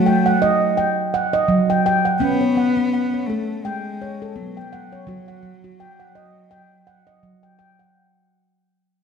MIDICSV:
0, 0, Header, 1, 3, 480
1, 0, Start_track
1, 0, Tempo, 716846
1, 1481, Time_signature, 4, 2, 24, 8
1, 6048, End_track
2, 0, Start_track
2, 0, Title_t, "Handpan"
2, 0, Program_c, 0, 114
2, 0, Note_on_c, 0, 54, 63
2, 0, Note_on_c, 0, 66, 55
2, 43, Note_on_c, 0, 79, 48
2, 173, Note_off_c, 0, 66, 0
2, 173, Note_on_c, 0, 78, 49
2, 280, Note_on_c, 0, 75, 61
2, 414, Note_off_c, 0, 79, 0
2, 518, Note_on_c, 0, 79, 49
2, 521, Note_off_c, 0, 75, 0
2, 521, Note_off_c, 0, 78, 0
2, 531, Note_off_c, 0, 79, 0
2, 732, Note_off_c, 0, 54, 0
2, 763, Note_on_c, 0, 78, 53
2, 893, Note_on_c, 0, 75, 58
2, 993, Note_on_c, 0, 54, 65
2, 1133, Note_off_c, 0, 75, 0
2, 1134, Note_off_c, 0, 78, 0
2, 1137, Note_on_c, 0, 79, 51
2, 1238, Note_off_c, 0, 79, 0
2, 1246, Note_on_c, 0, 79, 62
2, 1374, Note_on_c, 0, 78, 49
2, 1450, Note_off_c, 0, 54, 0
2, 1474, Note_on_c, 0, 59, 80
2, 1483, Note_off_c, 0, 79, 0
2, 1485, Note_on_c, 0, 61, 61
2, 1613, Note_off_c, 0, 78, 0
2, 1614, Note_on_c, 0, 73, 45
2, 1695, Note_off_c, 0, 59, 0
2, 1720, Note_on_c, 0, 59, 62
2, 1723, Note_off_c, 0, 61, 0
2, 1723, Note_on_c, 0, 78, 52
2, 1854, Note_on_c, 0, 61, 59
2, 1956, Note_off_c, 0, 78, 0
2, 1962, Note_off_c, 0, 73, 0
2, 1964, Note_on_c, 0, 78, 49
2, 2093, Note_off_c, 0, 61, 0
2, 2101, Note_on_c, 0, 73, 44
2, 2207, Note_on_c, 0, 69, 62
2, 2335, Note_off_c, 0, 78, 0
2, 2444, Note_off_c, 0, 69, 0
2, 2444, Note_on_c, 0, 79, 64
2, 2445, Note_off_c, 0, 73, 0
2, 2457, Note_off_c, 0, 79, 0
2, 2654, Note_off_c, 0, 59, 0
2, 2689, Note_on_c, 0, 73, 56
2, 2825, Note_on_c, 0, 69, 59
2, 2918, Note_on_c, 0, 59, 68
2, 3057, Note_off_c, 0, 73, 0
2, 3059, Note_off_c, 0, 69, 0
2, 3060, Note_on_c, 0, 79, 44
2, 3165, Note_on_c, 0, 78, 58
2, 3297, Note_on_c, 0, 73, 45
2, 3372, Note_off_c, 0, 59, 0
2, 3394, Note_on_c, 0, 54, 83
2, 3403, Note_off_c, 0, 78, 0
2, 3404, Note_on_c, 0, 66, 58
2, 3405, Note_off_c, 0, 79, 0
2, 3535, Note_off_c, 0, 73, 0
2, 3536, Note_on_c, 0, 78, 49
2, 3615, Note_off_c, 0, 54, 0
2, 3634, Note_on_c, 0, 54, 57
2, 3642, Note_off_c, 0, 66, 0
2, 3777, Note_on_c, 0, 66, 55
2, 3882, Note_off_c, 0, 78, 0
2, 3884, Note_on_c, 0, 79, 50
2, 4015, Note_off_c, 0, 66, 0
2, 4015, Note_on_c, 0, 78, 44
2, 4120, Note_on_c, 0, 75, 51
2, 4254, Note_off_c, 0, 79, 0
2, 4357, Note_on_c, 0, 79, 59
2, 4360, Note_off_c, 0, 75, 0
2, 4362, Note_off_c, 0, 78, 0
2, 4371, Note_off_c, 0, 79, 0
2, 4570, Note_off_c, 0, 54, 0
2, 4599, Note_on_c, 0, 78, 53
2, 4733, Note_on_c, 0, 75, 54
2, 4842, Note_on_c, 0, 54, 63
2, 4972, Note_off_c, 0, 75, 0
2, 4972, Note_off_c, 0, 78, 0
2, 4975, Note_on_c, 0, 79, 44
2, 5073, Note_off_c, 0, 79, 0
2, 5081, Note_on_c, 0, 79, 57
2, 5218, Note_on_c, 0, 78, 43
2, 5294, Note_off_c, 0, 54, 0
2, 5320, Note_off_c, 0, 79, 0
2, 5455, Note_off_c, 0, 78, 0
2, 6048, End_track
3, 0, Start_track
3, 0, Title_t, "Cello"
3, 0, Program_c, 1, 42
3, 0, Note_on_c, 1, 57, 61
3, 489, Note_off_c, 1, 57, 0
3, 1483, Note_on_c, 1, 59, 90
3, 2185, Note_on_c, 1, 57, 76
3, 2195, Note_off_c, 1, 59, 0
3, 2431, Note_on_c, 1, 56, 71
3, 2441, Note_off_c, 1, 57, 0
3, 2914, Note_on_c, 1, 54, 63
3, 2924, Note_off_c, 1, 56, 0
3, 3138, Note_off_c, 1, 54, 0
3, 3142, Note_on_c, 1, 54, 61
3, 4804, Note_off_c, 1, 54, 0
3, 6048, End_track
0, 0, End_of_file